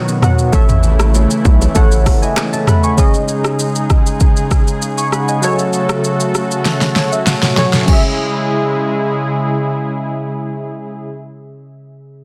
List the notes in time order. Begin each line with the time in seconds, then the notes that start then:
Already playing: B2 D#3 F#3 B3 F#4 C#5 D#5
0.08 low bongo, shaker
0.21 B2 B3 F#4 F#5, cross-stick, mid tom, shaker
0.39 shaker
0.52 A1 C#3 E3 A3 E4 A4 C#5 E5, kick, low conga, shaker
0.69 mid tom, shaker
0.83 low conga, shaker
1.00 cross-stick, low bongo, shaker
1.14 high bongo, shaker
1.31 shaker
1.45 B1, kick, shaker
1.62 low bongo, shaker
1.74 A1 A3 A4 C#5 F#5, kick, low conga, shaker
1.92 shaker
2.06 kick, cross-stick, open hi-hat, high bongo, low bongo, shaker
2.22 D#5 G#5, shaker
2.36 cross-stick, clap, high bongo, shaker
2.53 E5 A5, low bongo, shaker
2.67 F#5 B5, cross-stick, mid tom, shaker
2.83 G#5 C#6, shaker
2.97 C#3 G#3 C#4 D#4 G#4 D#5, kick, shaker
3.14 shaker
3.28 shaker
3.44 cross-stick, shaker
3.59 shaker
3.75 shaker
3.90 kick, cross-stick, shaker
4.06 shaker
4.20 kick, shaker
4.37 shaker
4.51 kick, cross-stick, shaker
4.67 shaker
4.82 shaker
4.98 G#5 C#6, shaker
5.12 F#5 B5, cross-stick, shaker
5.28 D#5 G#5, shaker
5.42 F#3 A3 F#4 A4 C#5, shaker
5.59 shaker
5.73 shaker
5.89 cross-stick, shaker
6.04 shaker
6.20 shaker
6.35 cross-stick, shaker
6.51 shaker
6.65 snare, shaker
6.81 snare, shaker
6.96 C#5, snare, shaker
7.12 E5, shaker
7.27 F#5, snare, shaker
7.43 snare, shaker
7.56 F#3 F#4 A4 C#5 G#5, snare, shaker
7.73 snare, shaker
7.83 C#3 C#4
7.88 C#3 G#3 E4 G#4, kick, crash
7.93 E5